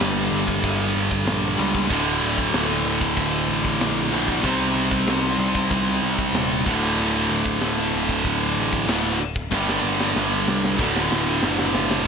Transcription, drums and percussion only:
0.00 snare loud
0.00 crash medium
0.48 kick medium
0.64 kick loud
0.64 crash medium
1.11 kick medium
1.27 snare loud
1.27 crash medium
1.75 kick medium
1.90 kick loud
1.90 crash medium
2.38 kick medium
2.54 snare loud
2.54 crash medium
3.01 kick medium
3.17 kick loud
3.17 crash medium
3.65 kick medium
3.81 snare loud
3.81 crash medium
4.28 kick medium
4.43 kick loud
4.43 crash medium
4.91 kick medium
5.07 snare loud
5.07 crash medium
5.55 kick medium
5.71 kick loud
5.71 crash medium
6.19 kick medium
6.34 snare loud
6.34 crash medium
6.66 kick loud
6.99 crash medium
7.46 kick medium
7.61 snare loud
7.61 crash medium
8.09 kick medium
8.25 kick loud
8.25 crash medium
8.73 kick medium
8.88 snare loud
8.88 crash medium
9.36 kick medium
9.52 kick loud
9.52 snare medium
9.69 snare medium
10.00 snare medium
10.16 snare medium
10.48 snare medium
10.64 snare medium
10.79 kick loud
10.96 snare medium
11.12 snare loud
11.43 snare loud
11.59 snare medium
11.75 snare loud
11.91 snare medium

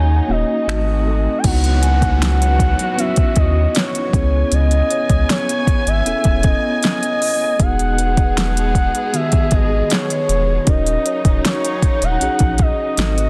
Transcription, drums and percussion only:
0.69 finger snap loud
1.44 kick loud
1.44 closed hi-hat medium
1.44 crash medium
1.64 closed hi-hat soft
1.83 closed hi-hat medium
2.02 kick medium
2.02 closed hi-hat medium
2.22 snare loud
2.22 closed hi-hat medium
2.42 closed hi-hat medium
2.60 kick medium
2.60 closed hi-hat medium
2.79 closed hi-hat medium
2.99 closed hi-hat medium
3.16 kick medium
3.16 closed hi-hat medium
3.36 kick loud
3.36 closed hi-hat soft
3.75 snare loud
3.75 closed hi-hat medium
3.95 closed hi-hat soft
4.13 kick loud
4.13 closed hi-hat medium
4.52 closed hi-hat medium
4.71 closed hi-hat soft
4.91 closed hi-hat medium
5.10 kick medium
5.10 closed hi-hat medium
5.30 snare loud
5.30 closed hi-hat medium
5.49 closed hi-hat medium
5.67 kick medium
5.67 closed hi-hat medium
5.87 closed hi-hat medium
6.06 closed hi-hat medium
6.24 kick medium
6.24 closed hi-hat medium
6.43 kick loud
6.43 closed hi-hat medium
6.83 snare loud
6.83 closed hi-hat medium
7.03 closed hi-hat soft
7.22 open hi-hat medium
7.60 kick loud
7.60 closed hi-hat medium
7.79 closed hi-hat soft
7.98 closed hi-hat medium
8.17 kick medium
8.17 closed hi-hat medium
8.37 snare loud
8.37 closed hi-hat medium
8.57 closed hi-hat medium
8.75 kick medium
8.75 closed hi-hat medium
8.95 closed hi-hat medium
9.14 closed hi-hat medium
9.32 kick medium
9.32 closed hi-hat medium
9.51 kick loud
9.51 closed hi-hat soft
9.90 snare loud
9.90 closed hi-hat medium
10.10 closed hi-hat soft
10.29 closed hi-hat medium
10.67 kick loud
10.67 closed hi-hat medium
10.86 closed hi-hat soft
11.06 closed hi-hat medium
11.25 kick medium
11.25 closed hi-hat medium
11.45 snare loud
11.45 closed hi-hat medium
11.65 closed hi-hat medium
11.82 kick medium
11.82 closed hi-hat medium
12.02 closed hi-hat medium
12.21 closed hi-hat medium
12.39 kick medium
12.39 closed hi-hat medium
12.58 kick loud
12.58 closed hi-hat soft
12.97 snare loud
12.97 closed hi-hat medium
13.18 closed hi-hat soft

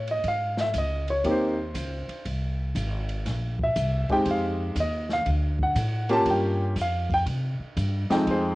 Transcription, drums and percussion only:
0.07 ride soft
0.24 kick soft
0.24 ride medium
0.57 snare medium
0.74 kick soft
0.74 hi-hat pedal medium
0.74 ride medium
1.08 ride soft
1.24 kick soft
1.24 ride medium
1.75 kick soft
1.75 hi-hat pedal medium
1.75 ride medium
2.09 ride soft
2.25 kick soft
2.25 ride medium
2.75 kick soft
2.75 hi-hat pedal medium
2.75 ride medium
3.09 ride soft
3.26 kick soft
3.26 snare soft
3.26 ride medium
3.59 kick medium
3.76 kick soft
3.76 hi-hat pedal medium
3.76 ride medium
4.09 kick medium
4.09 ride soft
4.25 kick soft
4.25 ride medium
4.76 kick soft
4.76 hi-hat pedal medium
4.76 ride medium
5.09 snare soft
5.26 kick soft
5.26 ride medium
5.59 kick medium
5.76 kick soft
5.76 hi-hat pedal medium
5.76 ride medium
6.09 ride soft
6.26 kick soft
6.26 ride medium
6.76 kick soft
6.76 hi-hat pedal medium
6.76 ride medium
7.10 kick medium
7.10 ride soft
7.26 kick soft
7.26 ride medium
7.77 kick soft
7.77 hi-hat pedal medium
7.77 ride medium
8.10 snare medium
8.10 ride soft
8.27 kick soft
8.27 ride soft

